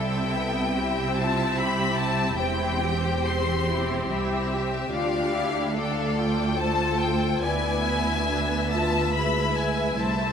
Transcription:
Already playing: double bass section C2, cello section C3, viola section C4 E4, violin section A4 E5 G5
0.35 viola section B3
0.74 viola section C4 G4, violin section E4 E5
1.17 viola section F4, violin section A5
1.56 viola section E4, violin section G4 B5
1.97 violin section A5
2.38 double bass section E1, cello section E2, viola section C4 E4, violin section G4 C5 G5
2.83 viola section G4
3.26 viola section C4 G4, violin section C6
3.70 viola section E4
4.10 double bass section C2, cello section C2, viola section E4, violin section E5
4.51 viola section G4
4.92 cello section D2, double bass section D2, viola section D4 F4, violin section D5 F5
5.33 viola section E4
5.74 viola section A3 D4, violin section A4 D5
5.82 violin section G5
5.91 violin section F5
6.01 violin section E5
6.08 violin section F5
6.15 viola section F4, violin section G5
6.57 viola section F4, violin section A4 C5 A5
7.01 violin section G5
7.42 double bass section D2, cello section D2, viola section B3 E4, violin section B4 D5 G#5
7.84 violin section E5
8.28 viola section B3 D4, violin section B4
8.71 viola section F4, violin section A5
9.14 viola section G#3 E4, violin section B4 B5
9.56 violin section G#5
9.97 cello section C2, double bass section C2, viola section A3, violin section C5 E5 A5

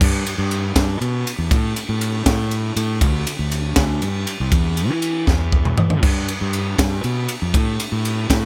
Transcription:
0.01 fingered electric bass G2, kick, crash
0.27 ride
0.38 fingered electric bass G2
0.51 ride
0.76 fingered electric bass G2, kick, snare, ride
1.01 fingered electric bass B2, ride
1.27 ride
1.38 fingered electric bass E2
1.51 fingered electric bass A2, kick, ride
1.76 ride
1.89 fingered electric bass A2
2.01 ride
2.26 fingered electric bass A2, kick, snare, ride
2.51 ride
2.76 fingered electric bass A2, ride
3.01 fingered electric bass D2, kick, ride
3.27 ride
3.39 fingered electric bass D2
3.52 ride
3.76 fingered electric bass D2, kick, snare, ride
4.02 fingered electric bass G2, ride
4.27 ride
4.40 fingered electric bass C2
4.52 fingered electric bass E2, kick, ride
4.77 ride
4.90 fingered electric bass E3
5.02 ride
5.27 fingered electric bass E2, kick, snare
5.52 kick
5.65 mid tom
5.78 fingered electric bass E3, floor tom
5.90 floor tom
6.03 fingered electric bass G2, kick, crash
6.28 ride
6.41 fingered electric bass G2
6.53 ride
6.78 fingered electric bass G2, kick, snare, ride
7.04 fingered electric bass B2, ride
7.29 ride
7.42 fingered electric bass F2
7.54 fingered electric bass A2, kick, ride
7.80 ride
7.92 fingered electric bass A2
8.05 ride
8.30 fingered electric bass A2, kick, snare, ride

